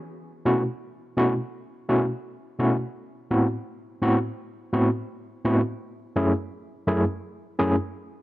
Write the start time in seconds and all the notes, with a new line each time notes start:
0.45 B2 A3 C#4 E4 F#4
1.17 B2 A3 C#4 E4 F#4
1.89 B2 A3 C#4 E4 F#4
2.59 B2 A3 C#4 E4 F#4
3.31 A2 B3 C4 E4 F#4
4.02 A2 B3 C4 E4 F#4
4.73 A2 B3 C4 E4 F#4
5.45 A2 B3 C4 E4 F#4
6.16 F#2 A3 C#4 E4 G#4
6.87 F#2 A3 C#4 E4 G#4
7.59 F#2 A3 C#4 E4 G#4